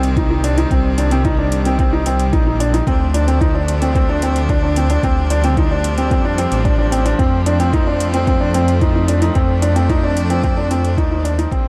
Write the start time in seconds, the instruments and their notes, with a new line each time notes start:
Already playing: detuned saw bass C2, string quartet D#3 G3 C4
0.03 closed hi-hat
0.17 felt piano D#4, kick, closed hi-hat
0.31 felt piano D#4
0.44 felt piano D4, closed hi-hat
0.58 felt piano D#4, closed hi-hat
0.71 detuned saw bass C2, felt piano C4, kick, closed hi-hat
0.98 felt piano D4, closed hi-hat
1.11 felt piano C4, closed hi-hat
1.25 felt piano D#4, kick, closed hi-hat
1.39 felt piano D4
1.52 closed hi-hat
1.65 felt piano C4, closed hi-hat
1.79 felt piano C4, kick, closed hi-hat
1.93 felt piano D#4
2.06 felt piano C4, closed hi-hat
2.19 closed hi-hat
2.33 detuned saw bass A#1, felt piano D#4, kick, closed hi-hat
2.46 felt piano D#4
2.60 felt piano D4, closed hi-hat
2.74 felt piano D#4, closed hi-hat
2.87 detuned saw bass D2, string quartet F3 A3 D4, felt piano C4, kick, closed hi-hat
3.14 felt piano D4, closed hi-hat
3.28 felt piano C4, closed hi-hat
3.41 felt piano D#4, kick, closed hi-hat
3.55 felt piano D4
3.68 closed hi-hat
3.82 felt piano C4, closed hi-hat
3.95 felt piano C4, kick, closed hi-hat
4.09 felt piano D4
4.22 felt piano C4, closed hi-hat
4.36 closed hi-hat
4.49 felt piano D4, kick, closed hi-hat
4.63 felt piano D4
4.76 felt piano C4, closed hi-hat
4.90 felt piano D4, closed hi-hat
5.03 detuned saw bass D2, string quartet G3, felt piano C4, kick, closed hi-hat
5.30 felt piano D4, closed hi-hat
5.44 felt piano C4, closed hi-hat
5.57 felt piano D#4, kick, closed hi-hat
5.71 felt piano D4
5.84 closed hi-hat
5.98 felt piano C4, closed hi-hat
6.11 detuned saw bass F2, felt piano C4, kick, closed hi-hat
6.25 felt piano D4
6.38 felt piano C4, closed hi-hat
6.52 detuned saw bass A1, closed hi-hat
6.65 felt piano D4, kick, closed hi-hat
6.79 felt piano D4
6.92 felt piano C4, closed hi-hat
7.05 felt piano D4, closed hi-hat
7.19 detuned saw bass F2, string quartet A3 C4, felt piano C4, kick, closed hi-hat
7.46 felt piano D4, closed hi-hat
7.60 felt piano C4, closed hi-hat
7.73 felt piano D#4, kick, closed hi-hat
7.87 felt piano D4
8.00 closed hi-hat
8.14 felt piano C4, closed hi-hat
8.27 felt piano C4, kick, closed hi-hat
8.41 felt piano D4
8.54 felt piano C4, closed hi-hat
8.68 closed hi-hat
8.81 felt piano D#4, kick, closed hi-hat
8.95 felt piano D#4
9.08 felt piano D4, closed hi-hat
9.22 felt piano D#4, closed hi-hat
9.35 detuned saw bass F2, felt piano C4, string quartet D4, kick, closed hi-hat
9.62 felt piano D4, closed hi-hat
9.76 felt piano C4, closed hi-hat
9.89 felt piano D#4, kick, closed hi-hat
10.03 felt piano D4
10.17 closed hi-hat
10.30 felt piano C4, closed hi-hat
10.43 felt piano C4, kick, closed hi-hat
10.58 felt piano D4
10.71 felt piano C4, closed hi-hat
10.85 closed hi-hat
10.97 felt piano D#4, kick, closed hi-hat
11.11 felt piano D#4
11.25 felt piano D4, closed hi-hat
11.38 felt piano D#4, closed hi-hat
11.51 detuned saw bass A#1, string quartet F3 A#3 C4, felt piano C4, kick, closed hi-hat